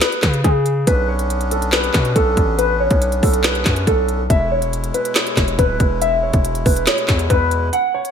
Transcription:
0.01 grand piano B4, snare, clap, closed hi-hat
0.12 closed hi-hat
0.22 808-style bass C#3, kick, snare, clap, closed hi-hat
0.34 closed hi-hat
0.44 808-style bass C#3, grand piano G#4, kick, closed hi-hat
0.66 closed hi-hat
0.87 808-style bass B1, accordion B3 C#4 D4, grand piano B4, kick, closed hi-hat
1.09 grand piano C#5
1.19 closed hi-hat
1.30 closed hi-hat
1.41 closed hi-hat
1.51 grand piano A4, closed hi-hat
1.62 closed hi-hat
1.72 grand piano B4, snare, clap, closed hi-hat
1.84 closed hi-hat
1.94 808-style bass B2, kick, snare, clap, closed hi-hat
2.05 closed hi-hat
2.16 808-style bass B1, grand piano A4, kick, closed hi-hat
2.37 808-style bass A1, kick, closed hi-hat
2.59 grand piano B4, closed hi-hat
2.80 grand piano C#5
2.90 808-style bass B1, kick, closed hi-hat
3.02 closed hi-hat
3.12 closed hi-hat
3.23 808-style bass B1, grand piano A4, kick, open hi-hat
3.34 closed hi-hat
3.44 grand piano B4, snare, clap, closed hi-hat
3.55 closed hi-hat
3.65 808-style bass F#2, kick, snare, clap, closed hi-hat
3.76 closed hi-hat
3.87 808-style bass B1, grand piano A4, kick, closed hi-hat
4.09 closed hi-hat
4.30 808-style bass E1, accordion B2 G#3 E4, grand piano E5, kick, closed hi-hat
4.51 grand piano C#5
4.62 closed hi-hat
4.73 closed hi-hat
4.84 closed hi-hat
4.94 grand piano B4, closed hi-hat
5.05 closed hi-hat
5.15 grand piano C#5, snare, clap, closed hi-hat
5.27 closed hi-hat
5.37 808-style bass E1, kick, snare, clap, closed hi-hat
5.48 closed hi-hat
5.59 808-style bass D1, grand piano B4, kick, closed hi-hat
5.80 808-style bass E1, kick, closed hi-hat
6.01 grand piano E5, closed hi-hat
6.23 grand piano C#5
6.33 808-style bass E1, kick, closed hi-hat
6.45 closed hi-hat
6.55 closed hi-hat
6.66 808-style bass E1, grand piano B4, kick, open hi-hat
6.76 closed hi-hat
6.87 grand piano C#5, snare, clap, closed hi-hat
6.98 closed hi-hat
7.08 808-style bass E2, kick, snare, clap, closed hi-hat
7.19 closed hi-hat
7.30 808-style bass E2, grand piano B4, kick, closed hi-hat
7.51 closed hi-hat
7.73 grand piano F#5, closed hi-hat
7.94 grand piano C#5
8.05 closed hi-hat

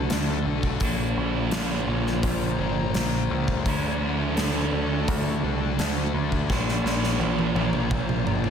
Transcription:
Already playing: overdriven electric guitar D3 F#3 A3 D4, distorted electric guitar A3 D4, ambient pad F#4 A4 D5 A5
0.10 picked electric bass D2, distorted electric guitar D3 A3 D4, snare, open hi-hat
0.45 picked electric bass B1, distorted electric guitar A3 D4
0.63 kick
0.80 picked electric bass A#1, distorted electric guitar A#2 F3 A#3, overdriven electric guitar D3 D4, ambient pad F4 C5 A#5, kick, open hi-hat
1.17 picked electric bass A#1
1.51 picked electric bass A#1, snare, open hi-hat
1.87 picked electric bass A#1, distorted electric guitar F3 A#3
2.07 snare
2.23 picked electric bass A#1, kick, open hi-hat
2.59 picked electric bass G1, distorted electric guitar F3 A#3
2.94 picked electric bass A#1, distorted electric guitar A#2 F3 A#3, snare, open hi-hat
3.30 picked electric bass C#2, distorted electric guitar F3 A#3
3.48 kick
3.66 picked electric bass D2, distorted electric guitar D3 A3 D4, overdriven electric guitar F#3, ambient pad F#4 A4 D5 A5, kick, open hi-hat
4.01 picked electric bass D2
4.36 picked electric bass D2, snare, open hi-hat
4.72 picked electric bass D2, distorted electric guitar A3 D4
5.08 picked electric bass D2, kick, open hi-hat
5.43 picked electric bass C2, distorted electric guitar A3 D4
5.78 picked electric bass D2, distorted electric guitar D3 A3 D4, snare, open hi-hat
6.14 picked electric bass D2, distorted electric guitar A3 D4
6.32 kick
6.49 picked electric bass A#1, distorted electric guitar A#2 F3 A#3, overdriven electric guitar D4, ambient pad F4 C5 A#5, kick, snare
6.69 snare
6.83 picked electric bass A#1, snare
7.04 snare
7.19 picked electric bass A#1, high tom
7.39 high tom
7.55 picked electric bass A#1, distorted electric guitar F3 A#3, high tom
7.73 mid tom
7.91 picked electric bass A#1, kick, mid tom
8.09 mid tom
8.25 picked electric bass G1, distorted electric guitar F3 A#3, mid tom
8.44 mid tom

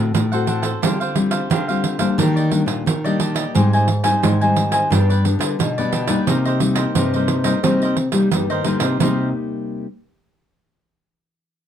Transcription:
Already playing: nylon-string guitar A2 D3 C4 F#4 A4
0.14 nylon-string guitar A2, pandeiro
0.32 nylon-string guitar C4 F#4 A4, cavaquinho A4 C5 F#5, pandeiro
0.47 cavaquinho D4 A4 C5 F#5, pandeiro
0.62 cavaquinho A4 C5 F#5, pandeiro
0.82 nylon-string guitar D3 G3 C4 F4, cavaquinho D4 G4 C5 F5, pandeiro
1.00 cavaquinho G4 C5 F5, pandeiro
1.15 nylon-string guitar G3 C4 F4, muted cavaquinho stroke, pandeiro
1.31 cavaquinho G4 C5 F5, pandeiro
1.50 nylon-string guitar D3, cavaquinho D4 G4 C5 F5, pandeiro
1.68 nylon-string guitar G3 C4 F4, cavaquinho G4 C5 F5, pandeiro
1.84 pandeiro
1.99 nylon-string guitar G3 A#3 D4, cavaquinho G4 C5 F5, pandeiro
2.18 nylon-string guitar D#3, cavaquinho D4 G4 D5 D#5, pandeiro
2.36 cavaquinho G4 D5 D#5, pandeiro
2.51 nylon-string guitar G3 A#3 D4, muted cavaquinho stroke, pandeiro
2.66 nylon-string guitar A#2, pandeiro
2.86 nylon-string guitar A#2 D#3, pandeiro
3.04 nylon-string guitar G3 A#3 D4, cavaquinho G4 D5 D#5, pandeiro
3.19 cavaquinho D4 G4 D5 D#5, pandeiro
3.35 cavaquinho G4 D5 D#5, pandeiro
3.55 nylon-string guitar G#2 G3 C4 D#4, cavaquinho G4 C5 D#5 G#5, pandeiro
3.73 cavaquinho C5 D#5 G#5, pandeiro
3.88 muted cavaquinho stroke, pandeiro
4.04 nylon-string guitar G3 C4 D#4, cavaquinho C5 D#5 G#5, pandeiro
4.23 nylon-string guitar G#2 D#3, cavaquinho G4 C5 D#5 G#5, pandeiro
4.41 nylon-string guitar G3 C4 D#4, cavaquinho C5 D#5 G#5, pandeiro
4.56 pandeiro
4.72 cavaquinho C5 D#5 G#5, pandeiro
4.90 nylon-string guitar G2 G3 B3 D4, cavaquinho D4 G4 B4 D5, pandeiro
5.09 cavaquinho G4 B4 D5, pandeiro
5.24 nylon-string guitar G3 B3 D4, muted cavaquinho stroke, pandeiro
5.39 nylon-string guitar D3, pandeiro
5.59 nylon-string guitar B2 D3, pandeiro
5.78 nylon-string guitar G3 B3 D4, cavaquinho G4 B4 D5, pandeiro
5.92 cavaquinho D4 G4 B4 D5, pandeiro
6.07 nylon-string guitar G3 A#3 D#4, cavaquinho G4 B4 D5, pandeiro
6.27 nylon-string guitar C3, cavaquinho D#4 A#4 C5 D#5, pandeiro
6.45 cavaquinho A#4 C5 D#5, pandeiro
6.60 nylon-string guitar G3 A#3 D#4, muted cavaquinho stroke, pandeiro
6.75 cavaquinho A#4 C5 D#5, pandeiro
6.95 nylon-string guitar G2 C3, cavaquinho D#4 A#4 C5 D#5, pandeiro
7.14 nylon-string guitar G3 A#3 D#4, cavaquinho A#4 C5 D#5, pandeiro
7.28 pandeiro
7.44 nylon-string guitar G3 A#3 D#4, cavaquinho A#4 C5 D#5, pandeiro
7.63 nylon-string guitar C3 G3 A#3 C4 D#4, cavaquinho D#4 A#4 C5 D#5, pandeiro
7.82 cavaquinho A#4 C5 D#5, pandeiro
7.97 muted cavaquinho stroke, pandeiro
8.12 nylon-string guitar G3 A#3 D#4, pandeiro
8.31 nylon-string guitar G2 G3, pandeiro
8.50 nylon-string guitar D#3, cavaquinho A#4 C5 D#5, pandeiro
8.64 nylon-string guitar D3 G3 A#3 D#4, cavaquinho D#4 A#4 C5 D#5, pandeiro
8.80 nylon-string guitar C3, cavaquinho A#4 C5 D#5, pandeiro
9.00 nylon-string guitar C3 G3 A#3 D#4, cavaquinho D#4 A#4 C5 D#5, pandeiro

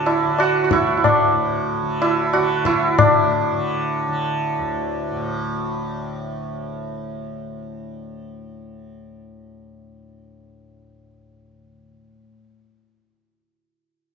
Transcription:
Already playing: tanpura D2 A2 D3, santur D4 F#4
0.06 santur E4, tabla na
0.24 tanpura D3
0.39 santur F#4, tabla na
0.64 santur F#4
0.71 santur E4, tabla ke
0.77 tanpura D2
0.97 santur E4
1.04 santur D4, tabla na, tabla ge
1.31 tanpura A2
1.82 tanpura D3
2.02 santur E4, tabla na
2.33 tanpura D3, santur F#4, tabla na
2.65 santur E4, tabla ke
2.98 santur D4, tabla na, tabla ge
3.53 tanpura D3
4.08 tanpura D3
4.59 tanpura D2
5.11 tanpura A2

